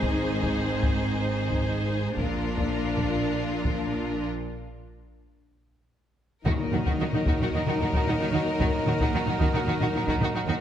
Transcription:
Already playing: double bass section G#1, cello section G#2, french horn section D#3 C4, viola section D#4, violin section G#4 C5
0.03 taiko
0.43 taiko
0.83 taiko
1.50 taiko
2.17 double bass section A#1, cello section A#2, french horn section F3 D4, viola section D4, violin section F4 A#4, taiko
2.58 taiko
2.98 taiko
3.65 taiko
6.44 double bass section D#2, cello section D#3, timpani D#3, french horn section F#3 D#4, string section A#3 D#4 F#4 D#5, viola section D#4, violin section F#4 A#4, trumpet section A#4, taiko
6.72 double bass section D#2, cello section D#3, viola section D#4, violin section F#4, taiko low-mid
6.85 cello section D#3, viola section D#4, violin section F#4, taiko
6.99 double bass section D#2, cello section D#3, viola section D#4, violin section F#4
7.13 cello section D#3, viola section D#4, violin section F#4, taiko low-mid
7.26 double bass section D#2, cello section D#3, viola section D#4, violin section F#4, taiko
7.40 cello section D#3, viola section D#4, violin section F#4, taiko low-mid
7.52 double bass section D#2, cello section D#3, viola section D#4, violin section F#4
7.66 cello section D#3, viola section D#4, violin section F#4, taiko low-mid
7.79 double bass section D#2, cello section D#3, viola section D#4, violin section F#4
7.93 cello section D#3, viola section D#4, violin section F#4, taiko
8.07 double bass section D#2, cello section D#3, viola section D#4, violin section F#4, taiko low-mid
8.20 cello section D#3, viola section D#4, violin section F#4
8.32 double bass section D#2, cello section D#3, viola section D#4, violin section F#4
8.59 double bass section D#2, cello section D#3, viola section D#4, violin section F#4, taiko
8.86 double bass section D#2, cello section D#3, viola section D#4, violin section F#4, taiko low-mid
9.00 cello section D#3, viola section D#4, violin section F#4, taiko
9.13 double bass section D#2, cello section D#3, viola section D#4, violin section F#4
9.26 cello section D#3, viola section D#4, violin section F#4, taiko low-mid
9.39 double bass section D#2, cello section D#3, viola section D#4, violin section F#4, taiko
9.53 cello section D#3, viola section D#4, violin section F#4, taiko low-mid
9.66 double bass section D#2, cello section D#3, viola section D#4, violin section F#4
9.80 cello section D#3, viola section D#4, violin section F#4, taiko low-mid
9.93 double bass section D#2, cello section D#3, viola section D#4, violin section F#4
10.06 cello section D#3, viola section D#4, violin section F#4, taiko
10.20 double bass section D#2, cello section D#3, viola section D#4, violin section F#4, taiko low-mid
10.34 cello section D#3, viola section D#4, violin section F#4
10.47 double bass section D#2, cello section D#3, viola section D#4, violin section F#4

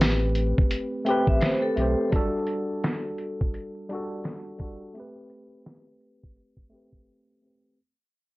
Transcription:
Already playing: sub bass A1, tine electric piano A3 C4 G4 B4
0.01 snare, closed hi-hat
0.35 closed hi-hat
0.58 kick
0.71 closed hi-hat
1.05 tine electric piano A3 C4 G4, vibraphone G5, closed hi-hat
1.10 tine electric piano B4
1.27 sub bass A1, vibraphone E5, kick
1.41 vibraphone C5, snare, closed hi-hat
1.62 vibraphone A4
1.76 sub bass B1, tine electric piano A3 C4 G4, closed hi-hat
1.81 tine electric piano C5
2.10 tine electric piano F#3 D4 F#4, kick, closed hi-hat
2.16 tine electric piano G3 A4
2.47 closed hi-hat
2.84 snare, closed hi-hat
3.18 closed hi-hat
3.41 kick
3.54 closed hi-hat
3.89 tine electric piano G3 D4 F#4, closed hi-hat
3.95 tine electric piano A4
4.24 snare, closed hi-hat
4.58 tine electric piano G3 D4 F#4, kick, closed hi-hat
4.64 tine electric piano A4
4.94 tine electric piano A3 C4 G4, closed hi-hat
5.00 tine electric piano B4
5.30 closed hi-hat
5.66 snare, closed hi-hat
6.00 closed hi-hat
6.23 kick
6.36 closed hi-hat
6.57 kick
6.69 tine electric piano A3 C4 G4
6.76 tine electric piano B4
6.92 kick
7.41 tine electric piano A3 C4 G4
7.47 tine electric piano B4

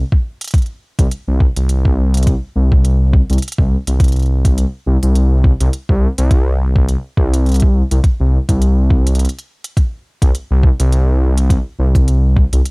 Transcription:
0.12 kick
0.41 closed hi-hat
0.44 closed hi-hat
0.48 closed hi-hat
0.51 kick, closed hi-hat
0.54 closed hi-hat
0.58 closed hi-hat
0.62 closed hi-hat
0.66 closed hi-hat
0.99 detuned saw bass C2, kick, closed hi-hat
1.11 closed hi-hat
1.28 detuned saw bass C2
1.40 kick
1.56 detuned saw bass C2, closed hi-hat
1.69 closed hi-hat
1.85 kick
2.14 closed hi-hat
2.17 closed hi-hat
2.23 closed hi-hat
2.27 kick, closed hi-hat
2.56 detuned saw bass C2
2.72 kick
2.85 closed hi-hat
3.13 kick
3.30 detuned saw bass C2, closed hi-hat
3.33 closed hi-hat
3.38 closed hi-hat
3.42 closed hi-hat
3.48 closed hi-hat
3.52 closed hi-hat
3.58 detuned saw bass C2, kick
3.87 detuned saw bass C2, closed hi-hat
4.00 kick, closed hi-hat
4.04 closed hi-hat
4.08 closed hi-hat
4.12 closed hi-hat
4.16 closed hi-hat
4.19 closed hi-hat
4.22 closed hi-hat
4.26 closed hi-hat
4.45 kick, closed hi-hat
4.58 closed hi-hat
4.87 detuned saw bass C2
5.03 detuned saw bass C2, closed hi-hat
5.16 closed hi-hat
5.44 kick
5.60 detuned saw bass C2, closed hi-hat
5.73 closed hi-hat
5.89 detuned saw bass C2, kick
6.18 detuned saw bass C2, closed hi-hat
6.31 kick, closed hi-hat
6.76 kick
6.89 closed hi-hat
7.17 detuned saw bass C2, kick
7.34 closed hi-hat
7.46 closed hi-hat
7.49 closed hi-hat
7.52 closed hi-hat
7.54 closed hi-hat
7.56 closed hi-hat
7.60 kick, closed hi-hat
7.91 detuned saw bass C2, closed hi-hat
8.04 kick, closed hi-hat
8.20 detuned saw bass C2
8.49 detuned saw bass C2, kick, closed hi-hat
8.62 closed hi-hat
8.90 kick
9.07 closed hi-hat
9.15 closed hi-hat
9.19 closed hi-hat
9.25 closed hi-hat
9.29 closed hi-hat
9.39 closed hi-hat
9.64 closed hi-hat
9.77 kick, closed hi-hat
10.22 detuned saw bass C2, kick, closed hi-hat
10.35 closed hi-hat
10.51 detuned saw bass C2
10.63 kick
10.79 detuned saw bass C2, closed hi-hat
10.93 closed hi-hat
11.38 closed hi-hat
11.50 kick, closed hi-hat
11.79 detuned saw bass C2
11.95 kick, closed hi-hat
12.08 closed hi-hat
12.37 kick
12.53 detuned saw bass C2, closed hi-hat
12.66 closed hi-hat

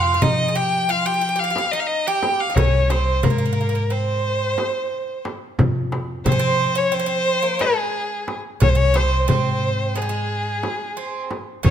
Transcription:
Already playing: upright bass F2, bouzouki F4, violin F5
0.14 bouzouki F4
0.22 upright bass F3, bouzouki D#4, violin D#5, darbuka dum, frame drum
0.48 bouzouki G#4
0.55 bouzouki G4, violin G5, darbuka ka
0.89 bouzouki F4, violin F5
1.06 bouzouki G4, violin G5
1.14 bouzouki G4
1.21 bouzouki G4
1.29 bouzouki G4
1.36 bouzouki G4, violin F5
1.44 bouzouki G4
1.50 bouzouki G4
1.56 bouzouki G4, darbuka tek, frame drum
1.72 bouzouki D#4, violin D#5
1.80 violin F5
1.87 violin D#5
2.07 bouzouki G4, violin G5
2.23 darbuka tek, frame drum
2.40 violin F5
2.50 bouzouki D#4
2.56 upright bass C2, bouzouki C#4, violin C#5, darbuka dum, frame drum
2.90 bouzouki C4, violin C5, darbuka tek, frame drum
3.23 upright bass G#2, bouzouki A#3, violin A#4, frame drum, darbuka dum
3.30 bouzouki A#3
3.38 bouzouki A#3
3.46 bouzouki A#3
3.53 bouzouki A#3
3.58 bouzouki A#3, darbuka ka
3.69 bouzouki A#3
3.75 bouzouki A#3
3.90 bouzouki C4, violin C5, darbuka ka
4.25 darbuka ka
4.58 darbuka tek, frame drum
4.92 darbuka ka
5.25 darbuka tek, frame drum
5.59 upright bass F2, frame drum, darbuka dum
5.92 darbuka tek, frame drum
6.26 upright bass F3, bouzouki C4, violin C5, frame drum, darbuka dum
6.32 bouzouki C#4
6.39 bouzouki C4
6.61 darbuka ka
6.75 bouzouki C#4, violin C#5
6.92 bouzouki C4, violin C5
6.99 bouzouki C#4
7.06 bouzouki C4
7.27 darbuka ka
7.42 bouzouki A#3
7.59 bouzouki G#3, violin G#4, darbuka tek, frame drum
8.28 darbuka tek, frame drum
8.60 upright bass C2, bouzouki C#4, violin C#5, frame drum, darbuka dum
8.69 violin C5
8.75 bouzouki C#4, violin C#5
8.94 bouzouki C4, violin C5, darbuka tek, frame drum
9.28 upright bass G#2, bouzouki C4, violin C5, frame drum, darbuka dum
9.63 darbuka ka
9.95 bouzouki G#3, violin G#4
10.02 bouzouki G3
10.09 bouzouki G#3
10.30 darbuka ka
10.63 darbuka tek, frame drum
10.97 bouzouki C4
11.31 darbuka tek, frame drum
11.63 upright bass F2, bouzouki C#4, violin C#5, frame drum, darbuka dum

